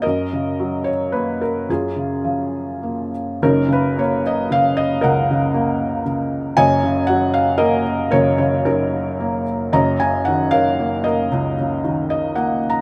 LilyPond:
<<
  \new Staff \with { instrumentName = "Felt piano" } { \time 3/4 \key fis \major \tempo 4 = 113 << { dis''4. cis''8 b'8 ais'8 | gis'2~ gis'8 r8 | ais'8 b'8 cis''8 dis''8 eis''8 dis''8 | fis''2 r4 |
gis''4 fis''8 eis''8 dis''4 | cis''8 cis''8 ais'4. r8 | ais''8 gis''8 fis''8 eis''4 dis''8~ | dis''8 r4 dis''8 \tuplet 3/2 { fis''4 ais''8 } | } \\ { ais'4. r4. | <cis' eis'>2~ <cis' eis'>8 r8 | <cis' dis'>4. r4. | <ais' dis''>2 r4 |
<cis'' dis''>4. r8 ais'4 | ais'4 <cis' dis'>4. r8 | <cis'' dis''>4. <ais' cis''>4 ais'8~ | ais'4 r2 | } >> }
  \new Staff \with { instrumentName = "Felt piano" } { \clef bass \time 3/4 \key fis \major fis,8 cis8 fis4 ais4 | fis,8 cis8 eis4 ais4 | <fis,, fis,>8 cis8 ais4 cis4 | cis,8 cis8 ais4 cis4 |
<fis,, fis,>8 cis8 fis4 ais4 | <fis,, fis,>8 cis8 fis4 ais4 | <fis,, fis,>8 cis8 dis4 ais4 | cis,8 cis8 dis4 ais4 | }
>>